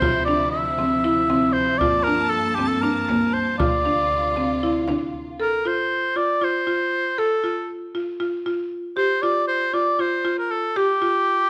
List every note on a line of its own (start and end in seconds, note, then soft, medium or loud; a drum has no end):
0.00 1.77 D2 medium
0.00 1.77 C3 medium
0.00 3.56 F3 medium
0.00 1.77 E4 medium
0.00 0.15 F4 medium
0.00 0.24 C5 medium
0.00 frame drum medium
0.25 0.55 D4 medium
0.25 0.50 D5 medium
0.51 1.54 E5 medium
0.78 0.92 C4 medium
0.78 frame drum soft
1.04 1.18 E4 medium
1.30 1.57 C4 medium
1.30 frame drum soft
1.53 1.80 C5 medium
1.53 frame drum soft
1.78 3.58 G2 medium
1.78 3.58 A#3 medium
1.78 1.94 F4 medium
1.78 2.05 D5 medium
1.78 3.58 A5 medium
1.78 frame drum soft
2.03 2.31 A#4 medium
2.07 2.34 D4 medium
2.29 2.57 A4 medium
2.55 2.72 C4 medium
2.55 2.69 G4 medium
2.55 frame drum soft
2.68 2.83 A4 medium
2.81 2.97 D4 medium
2.81 3.35 A#4 medium
3.09 3.36 A#3 medium
3.09 frame drum soft
3.33 3.58 C5 medium
3.33 frame drum soft
3.58 5.37 D2 medium
3.58 5.37 C3 medium
3.58 3.73 F4 medium
3.58 5.37 F4 medium
3.58 4.83 D5 medium
3.58 frame drum medium
3.85 4.13 D4 medium
3.85 frame drum soft
4.11 frame drum soft
4.36 4.51 C4 medium
4.36 frame drum soft
4.62 4.77 E4 medium
4.62 frame drum soft
4.88 5.15 D4 medium
4.88 frame drum soft
5.14 frame drum soft
5.40 5.53 A4 medium
5.40 5.69 A#4 medium
5.65 5.92 F4 medium
5.65 6.18 C5 medium
6.16 6.29 F4 medium
6.16 6.45 D5 medium
6.41 6.55 F4 medium
6.41 7.20 C5 medium
6.67 6.94 F4 medium
7.18 7.32 A4 medium
7.18 7.76 A4 medium
7.44 7.71 F4 medium
7.95 8.08 F4 medium
8.20 8.34 F4 medium
8.46 8.73 F4 medium
8.97 9.10 G4 medium
8.97 9.23 C5 medium
9.22 9.50 F4 medium
9.22 9.47 D5 loud
9.48 9.75 C5 medium
9.74 9.87 F4 medium
9.74 10.02 D5 medium
9.99 10.13 F4 medium
9.99 10.38 C5 medium
10.25 10.52 F4 medium
10.39 10.52 A#4 medium
10.51 10.79 A4 medium
10.76 10.90 G4 medium
10.76 11.50 G4 medium
11.02 11.29 F4 medium